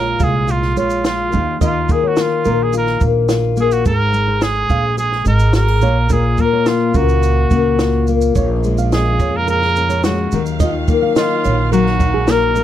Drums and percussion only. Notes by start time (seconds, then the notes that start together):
0.20 kick, shaker
0.48 shaker
0.62 snare
0.77 shaker
0.90 shaker
1.04 snare, shaker
1.32 shaker
1.61 kick, shaker
1.89 kick, shaker
2.17 snare, shaker
2.45 shaker
2.73 shaker
2.86 snare
3.01 kick, shaker
3.29 snare, shaker
3.57 shaker
3.71 shaker
3.86 kick, shaker
4.14 shaker
4.41 snare, shaker
4.69 kick, shaker
4.98 shaker
5.12 snare
5.25 shaker
5.39 shaker
5.53 snare, shaker
5.81 shaker
6.09 kick, shaker
6.38 kick, shaker
6.66 snare, shaker
6.94 kick, shaker
7.09 shaker
7.23 shaker
7.51 kick, shaker
7.79 snare, shaker
8.07 shaker
8.21 shaker
8.36 kick, shaker
8.64 shaker
8.78 shaker
8.92 snare, shaker
9.20 kick, shaker
9.48 shaker
9.62 snare
9.76 shaker
9.90 shaker
10.04 snare, shaker
10.32 shaker
10.46 shaker
10.60 kick, shaker
10.88 kick, shaker
11.16 snare, shaker
11.45 shaker
11.73 shaker
11.86 snare
12.00 kick, shaker
12.28 snare, shaker
12.55 shaker